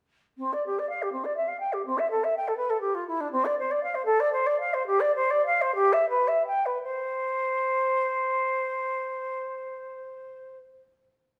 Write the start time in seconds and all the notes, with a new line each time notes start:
0.37 C4
0.53 D5
0.66 G4
0.79 D5
0.89 F5
1.02 G4
1.12 C4
1.24 D5
1.36 E5
1.48 F5
1.60 G5
1.73 G4
1.85 C4
1.98 E5
2.10 A4
2.24 E5
2.37 G5
2.47 A4
2.56 B4
2.69 A4
2.80 G4
2.94 F4
3.07 E4
3.20 D4
3.31 C4
3.45 D5
3.58 C5
3.71 D5
3.83 F5
3.94 C5
4.05 A4
4.20 D5
4.32 C5
4.46 D5
4.60 F5
4.73 C5
4.86 G4
5.00 D5
5.15 C5
5.30 D5
5.45 F5
5.61 C5
5.75 G4
5.92 E5
6.09 B4
6.27 E5
6.47 G5
6.65 B4
6.83 C5